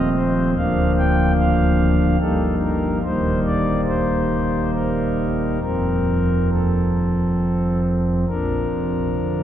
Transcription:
Already playing: D#1 D#2 F3 A3 C4
0.15 C5
0.57 D1 D2 F3 A#3 D4 F5
0.98 G5
1.38 F5
2.20 G1 G2 G3 A#3 D#4 A4
2.62 A#4
3.04 D#1 D#2 G3 A#3 D#4 C5
3.46 D5
3.88 C5
4.73 A#4
5.62 F1 F2 F3 C4 A#4
6.51 A4
8.28 A#1 A#2 F3 D4 A#4
8.70 C3
9.13 D3

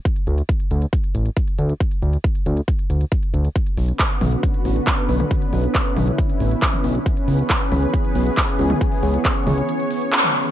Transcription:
0.05 kick, closed hi-hat
0.16 closed hi-hat
0.27 D2, closed hi-hat
0.38 closed hi-hat
0.49 kick, closed hi-hat
0.60 closed hi-hat
0.71 D2, closed hi-hat
0.82 closed hi-hat
0.93 kick, closed hi-hat
1.04 closed hi-hat
1.15 A1, closed hi-hat
1.26 closed hi-hat
1.37 kick, closed hi-hat
1.48 closed hi-hat
1.59 D2, closed hi-hat
1.69 closed hi-hat
1.80 kick, closed hi-hat
1.91 closed hi-hat
2.02 D2, closed hi-hat
2.13 closed hi-hat
2.24 kick, closed hi-hat
2.35 closed hi-hat
2.46 D2, closed hi-hat
2.57 closed hi-hat
2.68 kick, closed hi-hat
2.79 closed hi-hat
2.90 D2, closed hi-hat
3.01 closed hi-hat
3.12 kick, closed hi-hat
3.23 closed hi-hat
3.34 D2, closed hi-hat
3.45 closed hi-hat
3.56 D3 B3 C#4 F#4 B4, kick, closed hi-hat
3.67 closed hi-hat
3.77 B1, open hi-hat
3.88 closed hi-hat
3.99 kick, clap, closed hi-hat
4.10 closed hi-hat
4.21 B1, open hi-hat, mid tom
4.32 closed hi-hat
4.43 kick, closed hi-hat
4.54 closed hi-hat
4.65 A1, open hi-hat
4.76 closed hi-hat
4.87 kick, clap, closed hi-hat
4.98 closed hi-hat
5.09 B1, open hi-hat
5.20 closed hi-hat, mid tom
5.31 E4, kick, closed hi-hat
5.42 closed hi-hat
5.53 B1, open hi-hat
5.64 closed hi-hat
5.75 kick, clap, closed hi-hat
5.86 closed hi-hat
5.97 B1, open hi-hat, mid tom
6.08 closed hi-hat
6.18 kick, closed hi-hat
6.30 closed hi-hat
6.40 A1, open hi-hat
6.51 closed hi-hat
6.62 kick, clap, closed hi-hat
6.73 closed hi-hat, mid tom
6.84 B1, open hi-hat
6.95 closed hi-hat
7.06 E3 B3 G#4 B4, kick, closed hi-hat
7.17 closed hi-hat
7.28 C#2, open hi-hat
7.39 closed hi-hat
7.50 kick, clap, closed hi-hat
7.61 closed hi-hat
7.72 C#2, open hi-hat, mid tom
7.83 closed hi-hat
7.94 kick, closed hi-hat
8.05 closed hi-hat
8.15 B1, open hi-hat
8.26 closed hi-hat
8.37 kick, clap, closed hi-hat
8.48 closed hi-hat
8.59 C#2, open hi-hat
8.70 closed hi-hat, mid tom
8.81 C#5, kick, closed hi-hat
8.92 open hi-hat
9.03 C#2, open hi-hat
9.14 closed hi-hat
9.25 kick, clap, closed hi-hat
9.36 closed hi-hat
9.47 C#2, open hi-hat, mid tom
9.58 closed hi-hat
9.69 closed hi-hat
9.80 closed hi-hat
9.91 open hi-hat
10.02 closed hi-hat
10.13 clap, closed hi-hat
10.24 closed hi-hat, mid tom
10.35 open hi-hat
10.46 closed hi-hat

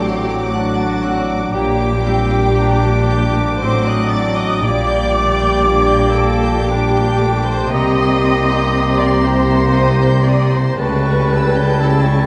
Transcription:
Already playing: A1 A2 F#3 C4 D4 F#5 D6
0.00 G4 C5 G5 C6
0.28 D6
0.52 F#3 D4 F#4 F#5 F#6
0.77 A6
1.02 F#3 C4 F#6
1.28 D6
1.53 A#1 A#2 G3 A#3 D4 G4 G5 A#5 D6
1.79 D6
2.05 G3 C4 G6
2.29 D6
2.56 D4 A#5
2.81 D6
3.09 D5 G6
3.33 D6
3.59 A1 A2 F#3 C5 F#5 C6 D6
3.63 C4 D4
3.84 D#5 F#6
3.89 D#6
4.08 D5 A6
4.12 D4 D5 D6
4.36 D#5 D#6 F#6
4.60 A#1 A#2 G3 A#3 G4 D5 G5 D6
4.86 G6
5.10 G3 D6
5.15 A3
5.36 G6
5.62 D4 D6
5.67 A#3
5.88 G6
6.13 A4 D5 A5 D6
6.41 G6
6.67 G3 D4 G4 G5 D6
6.93 G6
7.18 G3 A3 D6
7.44 C5 C6 G6
7.70 C2 C3 A#3 G4 D#5 A#5 C6 D#6
7.98 C6
8.21 C4 D#6
8.50 G6
8.73 A#4 D#6
8.99 D5 C6 D6
9.24 G4 C5 A#5 C6
9.51 C6
9.75 A#4 D#6
10.02 G6
10.26 C4 D5 D6 D#6
10.53 C5 C6
10.78 C#2 C#3 G3 A3 F#4 G4 B4 G5 A5 B5
11.06 C#6
11.29 G3 E4 E6
11.57 G6
11.80 A3 E4 G4 A4 A5 E6
12.06 C#6

